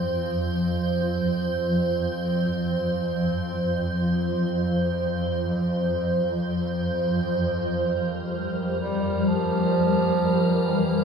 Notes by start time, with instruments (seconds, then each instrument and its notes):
Already playing: synth drone F2 F3, ambient pad C5
7.41 synth drone F2 G3, ambient pad A#4
8.81 bass clarinet G3
9.27 bass clarinet F3
10.67 bass clarinet E3